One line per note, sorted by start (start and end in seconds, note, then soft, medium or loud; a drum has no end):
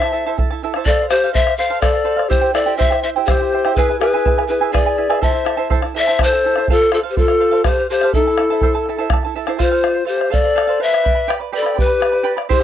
0.00 0.12 E4 soft
0.00 0.12 A4 soft
0.00 0.34 C5 medium
0.00 0.34 E5 loud
0.00 0.12 A5 medium
0.00 bombo rim medium
0.12 0.25 E4 medium
0.12 0.26 A4 medium
0.12 0.25 E5 medium
0.12 0.25 A5 medium
0.26 0.37 E4 medium
0.26 0.38 A4 medium
0.26 0.38 C5 medium
0.26 0.37 E5 medium
0.26 0.38 A5 medium
0.26 bombo rim soft
0.38 0.50 E4 medium
0.38 0.50 A4 medium
0.38 0.50 E5 medium
0.38 0.49 A5 medium
0.38 bombo low medium
0.50 0.63 E4 soft
0.50 0.63 A4 medium
0.50 0.62 A5 medium
0.50 bombo rim soft
0.63 0.75 E4 medium
0.63 0.75 A4 medium
0.63 0.75 E5 medium
0.63 0.75 A5 medium
0.74 0.87 E4 medium
0.74 0.86 A4 medium
0.74 0.87 C5 medium
0.74 0.87 E5 medium
0.74 0.87 A5 medium
0.74 bombo rim medium
0.86 1.09 A4 medium
0.86 0.99 A4 medium
0.86 0.99 C5 medium
0.86 1.09 D5 loud
0.86 1.00 F5 medium
0.86 bombo low medium
1.01 1.11 C5 soft
1.01 1.12 F5 medium
1.10 1.32 G4 medium
1.10 1.23 A4 medium
1.10 1.33 C5 medium
1.10 1.23 C5 medium
1.10 bombo rim medium
1.14 1.23 F5 medium
1.24 1.33 A4 medium
1.24 1.34 C5 medium
1.24 1.35 F5 medium
1.32 1.46 A4 medium
1.32 1.56 C5 medium
1.32 1.46 C5 medium
1.32 1.57 E5 loud
1.32 1.45 F5 medium
1.32 bombo rim soft
1.32 bombo low medium
1.47 1.58 C5 soft
1.47 1.59 F5 medium
1.47 bombo rim medium
1.58 1.69 A4 medium
1.58 1.80 C5 medium
1.58 1.69 C5 medium
1.58 1.81 F5 medium
1.58 1.69 F5 medium
1.70 1.81 A4 medium
1.70 1.81 C5 medium
1.70 1.82 F5 medium
1.70 bombo rim soft
1.81 2.30 A4 medium
1.81 1.95 A4 medium
1.81 1.93 C5 medium
1.81 2.31 D5 medium
1.81 1.92 F5 medium
1.81 bombo rim medium
1.81 bombo low medium
1.94 2.04 C5 soft
1.94 2.04 F5 medium
2.04 2.17 A4 medium
2.04 2.16 C5 medium
2.04 2.15 F5 medium
2.17 2.30 A4 soft
2.17 2.29 C5 medium
2.17 2.30 F5 medium
2.17 bombo rim medium
2.29 2.42 E4 medium
2.29 2.53 G4 medium
2.29 2.54 C5 medium
2.29 2.41 C5 medium
2.29 2.43 E5 medium
2.29 2.40 G5 medium
2.29 bombo rim soft
2.29 bombo low medium
2.41 2.53 E4 soft
2.41 2.54 C5 soft
2.41 2.55 G5 medium
2.54 2.66 E4 medium
2.54 2.76 A4 medium
2.54 2.65 C5 medium
2.54 2.77 D5 medium
2.54 2.66 E5 medium
2.54 2.65 G5 medium
2.54 bombo rim medium
2.66 2.77 E4 medium
2.66 2.77 G4 medium
2.66 2.77 C5 medium
2.66 2.76 E5 medium
2.66 2.78 G5 medium
2.77 2.90 E4 medium
2.77 2.91 G4 medium
2.77 3.00 C5 medium
2.77 2.90 C5 medium
2.77 3.01 E5 loud
2.77 2.91 E5 medium
2.77 2.89 G5 medium
2.77 bombo low medium
2.90 3.03 E4 soft
2.90 3.03 C5 soft
2.90 3.03 G5 soft
2.90 bombo rim medium
3.01 3.15 E4 medium
3.01 3.07 C5 medium
3.01 3.15 C5 medium
3.01 3.09 E5 medium
3.01 3.16 E5 medium
3.05 3.15 G5 medium
3.16 3.27 E4 medium
3.16 3.29 G4 soft
3.16 3.28 C5 medium
3.16 3.28 E5 medium
3.16 3.28 G5 medium
3.25 3.40 E4 soft
3.25 3.72 G4 medium
3.25 3.30 G#4 medium
3.25 3.73 C5 medium
3.25 3.41 E5 medium
3.25 bombo rim medium
3.25 bombo low medium
3.30 3.40 C5 medium
3.30 3.38 G5 medium
3.39 3.52 E4 soft
3.39 3.53 C5 soft
3.39 3.52 G5 medium
3.39 bombo rim soft
3.53 3.64 E4 medium
3.53 3.64 C5 medium
3.53 3.65 E5 medium
3.53 3.64 G5 medium
3.53 bombo rim soft
3.65 3.77 E4 medium
3.65 3.77 G4 medium
3.65 3.77 C5 medium
3.65 3.76 E5 medium
3.65 3.77 G5 medium
3.65 bombo rim medium
3.74 3.89 E4 medium
3.74 3.98 G#4 medium
3.74 3.90 G#4 medium
3.74 3.99 B4 medium
3.74 3.89 B4 medium
3.74 3.90 E5 medium
3.74 bombo low medium
3.79 3.88 G#5 medium
3.89 4.00 E4 soft
3.89 4.01 B4 soft
3.89 4.01 G#5 soft
3.99 4.13 E4 medium
3.99 4.45 G#4 medium
3.99 4.46 B4 medium
3.99 4.12 B4 medium
3.99 4.13 E5 medium
3.99 4.12 G#5 medium
3.99 bombo rim medium
4.14 4.25 E4 medium
4.14 4.26 G#4 medium
4.14 4.25 B4 medium
4.14 4.24 E5 medium
4.14 4.26 G#5 medium
4.25 4.38 E4 medium
4.25 4.37 B4 medium
4.25 4.37 E5 medium
4.25 4.37 G#5 medium
4.25 bombo rim soft
4.25 bombo low medium
4.38 4.48 E4 soft
4.38 4.49 B4 soft
4.38 4.50 G#5 medium
4.38 bombo rim medium
4.47 4.60 E4 medium
4.47 4.75 G#4 medium
4.47 4.73 B4 medium
4.47 4.60 B4 medium
4.47 4.60 E5 medium
4.51 4.60 G#5 medium
4.61 4.72 E4 medium
4.61 4.71 G#4 medium
4.61 4.72 B4 medium
4.61 4.72 E5 medium
4.61 4.72 G#5 medium
4.72 4.85 E4 medium
4.72 4.85 G#4 medium
4.72 5.24 G#4 medium
4.72 4.85 B4 medium
4.72 5.23 D5 medium
4.72 4.86 E5 medium
4.72 4.85 G#5 medium
4.72 bombo rim medium
4.72 bombo low medium
4.86 4.97 E4 soft
4.86 4.97 B4 medium
4.86 4.97 G#5 medium
4.98 5.08 E4 medium
4.98 5.09 B4 medium
4.98 5.08 E5 medium
4.98 5.08 G#5 medium
5.10 5.20 E4 medium
5.10 5.22 G#4 medium
5.10 5.22 B4 medium
5.10 5.20 E5 medium
5.10 5.22 G#5 medium
5.10 bombo rim medium
5.21 5.33 E4 medium
5.21 5.32 A4 medium
5.21 5.68 C5 medium
5.21 5.34 E5 medium
5.21 5.68 E5 medium
5.21 5.31 A5 medium
5.21 bombo low medium
5.32 5.44 E4 soft
5.32 5.44 A4 soft
5.32 5.45 A5 medium
5.45 5.57 E4 medium
5.45 5.56 A4 medium
5.45 5.57 E5 medium
5.45 5.56 A5 medium
5.45 bombo rim medium
5.57 5.69 E4 medium
5.57 5.70 A4 medium
5.57 5.69 C5 medium
5.57 5.69 E5 medium
5.57 5.70 A5 medium
5.70 5.83 E4 medium
5.70 5.82 A4 medium
5.70 5.83 C5 medium
5.70 5.83 E5 medium
5.70 5.81 A5 medium
5.70 bombo rim soft
5.70 bombo low medium
5.82 5.94 E4 soft
5.82 5.95 A4 soft
5.82 5.95 A5 soft
5.82 bombo rim medium
5.94 6.07 E4 medium
5.94 6.07 A4 medium
5.94 6.07 E5 medium
5.94 6.25 E5 loud
5.94 6.06 A5 medium
5.99 6.04 D5 medium
6.03 6.26 C5 medium
6.03 6.19 A5 medium
6.07 6.19 E4 medium
6.07 6.20 A4 medium
6.07 6.20 C5 soft
6.07 6.19 E5 medium
6.07 bombo rim soft
6.19 6.32 E4 soft
6.19 6.32 A4 medium
6.19 6.32 E5 medium
6.19 6.32 A5 medium
6.19 bombo rim medium
6.19 bombo low medium
6.23 6.28 B4 medium
6.23 6.70 C5 medium
6.27 6.70 A4 medium
6.32 6.44 E4 soft
6.32 6.45 A4 soft
6.32 6.44 A5 medium
6.32 bombo rim soft
6.46 6.56 E4 medium
6.46 6.56 A4 medium
6.46 6.57 E5 medium
6.46 6.56 A5 medium
6.56 6.69 E4 medium
6.56 6.69 A4 medium
6.56 6.69 C5 medium
6.56 6.69 E5 medium
6.56 6.69 A5 medium
6.56 bombo rim medium
6.68 6.92 F4 medium
6.68 6.81 A4 medium
6.68 6.92 A4 medium
6.68 6.80 C5 medium
6.68 6.79 F5 medium
6.68 bombo low medium
6.80 6.91 C5 soft
6.80 6.92 F5 soft
6.92 6.98 F4 medium
6.92 7.04 A4 medium
6.92 7.00 A4 medium
6.92 7.03 C5 medium
6.92 7.02 F5 medium
6.92 bombo rim medium
7.03 7.16 A4 medium
7.03 7.16 C5 medium
7.03 7.16 F5 medium
7.10 7.19 G4 medium
7.10 7.19 C5 medium
7.17 7.67 F4 medium
7.17 7.29 A4 medium
7.17 7.67 A4 medium
7.17 7.28 C5 medium
7.17 7.27 F5 medium
7.17 bombo rim soft
7.17 bombo low medium
7.28 7.39 C5 soft
7.28 7.39 F5 medium
7.28 bombo rim soft
7.39 7.52 A4 medium
7.39 7.51 C5 medium
7.39 7.50 F5 medium
7.51 7.63 A4 medium
7.51 7.64 C5 medium
7.51 7.64 F5 medium
7.51 bombo rim soft
7.64 7.89 G4 medium
7.64 7.77 A4 medium
7.64 7.77 C5 medium
7.64 7.89 C5 medium
7.64 7.77 F5 medium
7.64 bombo rim medium
7.64 bombo low medium
7.77 7.89 C5 soft
7.77 7.90 F5 medium
7.77 bombo rim soft
7.90 8.12 G4 medium
7.90 8.02 A4 medium
7.90 8.12 C5 medium
7.90 8.02 C5 medium
7.90 8.02 F5 medium
8.01 8.14 A4 medium
8.01 8.14 C5 medium
8.01 8.14 F5 medium
8.01 bombo rim medium
8.13 8.28 D#4 medium
8.13 8.26 E4 medium
8.13 9.07 A4 medium
8.13 8.26 A4 medium
8.13 8.26 E5 medium
8.13 8.26 A5 medium
8.13 bombo low medium
8.27 9.07 E4 medium
8.27 8.38 E4 soft
8.27 8.37 A4 soft
8.27 8.38 A5 medium
8.38 8.50 E4 medium
8.38 8.50 A4 medium
8.38 8.50 E5 medium
8.38 8.49 A5 medium
8.38 bombo rim medium
8.50 8.62 E4 medium
8.50 8.62 A4 medium
8.50 8.61 C5 medium
8.50 8.62 E5 medium
8.50 8.62 A5 medium
8.50 bombo rim soft
8.61 8.75 E4 medium
8.61 8.75 A4 medium
8.61 8.74 C5 medium
8.61 8.75 E5 medium
8.61 8.73 A5 medium
8.61 bombo rim soft
8.61 bombo low medium
8.75 8.87 E4 soft
8.75 8.87 A4 medium
8.75 8.87 A5 medium
8.86 8.98 E4 medium
8.86 8.98 A4 medium
8.86 8.99 E5 medium
8.86 8.97 A5 medium
8.86 bombo rim soft
8.98 9.11 E4 medium
8.98 9.11 A4 medium
8.98 9.11 C5 medium
8.98 9.11 E5 medium
8.98 9.11 A5 medium
9.10 9.23 E4 medium
9.10 9.24 A4 medium
9.10 9.23 E5 medium
9.10 9.23 A5 medium
9.10 bombo rim medium
9.10 bombo low medium
9.23 9.35 E4 soft
9.23 9.35 A4 medium
9.23 9.36 A5 medium
9.23 bombo rim soft
9.35 9.47 E4 medium
9.35 9.46 A4 medium
9.35 9.47 E5 medium
9.35 9.46 A5 medium
9.47 9.60 E4 medium
9.47 9.57 A4 medium
9.47 9.57 C5 medium
9.47 9.58 E5 medium
9.47 9.59 A5 medium
9.47 bombo rim medium
9.58 10.03 F4 medium
9.58 9.71 A4 medium
9.58 9.71 C5 medium
9.58 10.05 C5 medium
9.58 9.70 F5 medium
9.58 bombo low medium
9.71 9.81 A4 medium
9.71 9.82 C5 medium
9.71 9.83 F5 medium
9.82 9.95 A4 medium
9.82 9.94 C5 medium
9.82 9.93 F5 medium
9.82 bombo rim medium
9.94 10.04 C5 soft
9.94 10.05 F5 soft
9.94 bombo rim soft
10.05 10.33 G4 medium
10.05 10.18 A4 medium
10.05 10.17 C5 medium
10.05 10.34 C5 medium
10.05 10.16 F5 medium
10.18 10.29 C5 soft
10.18 10.30 F5 medium
10.18 bombo rim medium
10.30 10.43 A4 medium
10.30 10.82 A4 medium
10.30 10.43 C5 medium
10.30 10.84 D5 medium
10.30 10.42 F5 medium
10.30 bombo rim soft
10.30 bombo low medium
10.43 10.54 C5 soft
10.43 10.55 F5 medium
10.55 10.68 A4 medium
10.55 10.67 C5 medium
10.55 10.66 F5 medium
10.55 bombo rim medium
10.67 10.79 A4 soft
10.67 10.79 C5 medium
10.67 10.79 F5 medium
10.80 10.92 A4 medium
10.80 11.29 B4 medium
10.80 10.91 C5 medium
10.80 11.30 E5 loud
10.80 10.90 F5 medium
10.91 11.04 C5 soft
10.91 11.02 F5 medium
10.91 bombo rim medium
11.03 11.15 B4 medium
11.03 11.15 D5 medium
11.03 11.15 G5 medium
11.03 11.14 B5 medium
11.03 bombo low medium
11.15 11.27 B4 soft
11.15 11.27 D5 medium
11.15 11.28 B5 soft
11.28 11.40 G4 medium
11.28 11.40 B4 medium
11.28 11.39 D5 medium
11.28 11.40 G5 medium
11.28 11.39 B5 medium
11.28 bombo rim medium
11.40 11.52 B4 soft
11.40 11.52 D5 medium
11.40 11.52 B5 medium
11.40 bombo rim soft
11.52 11.63 G4 medium
11.52 11.80 A4 medium
11.52 11.63 B4 medium
11.52 11.62 D5 medium
11.52 11.62 G5 medium
11.52 11.61 B5 medium
11.57 11.81 D5 medium
11.63 11.76 G4 medium
11.63 11.74 B4 medium
11.63 11.74 D5 medium
11.63 11.73 G5 medium
11.63 11.75 B5 medium
11.63 bombo rim medium
11.74 12.32 G4 medium
11.74 11.87 B4 medium
11.74 11.86 D5 medium
11.74 11.88 G5 medium
11.74 11.85 B5 medium
11.78 12.33 B4 medium
11.78 bombo rim soft
11.78 bombo low medium
11.86 11.99 B4 soft
11.86 12.00 D5 soft
11.86 12.00 B5 soft
12.00 12.12 B4 medium
12.00 12.12 D5 medium
12.00 12.12 G5 medium
12.00 12.11 B5 medium
12.00 bombo rim medium
12.12 12.22 B4 soft
12.12 12.22 D5 soft
12.12 12.23 B5 soft
12.12 bombo rim soft
12.23 12.36 G4 medium
12.23 12.36 B4 medium
12.23 12.36 D5 medium
12.23 12.36 G5 medium
12.23 12.36 B5 medium
12.37 12.49 B4 soft
12.37 12.49 D5 soft
12.37 12.49 B5 soft
12.37 bombo rim medium
12.49 12.60 E4 medium
12.49 12.60 G4 medium
12.49 12.56 G#4 medium
12.49 12.60 C5 medium
12.49 12.63 C5 medium
12.49 12.60 E5 medium
12.49 12.59 C6 medium
12.49 bombo low medium
12.55 12.63 G4 medium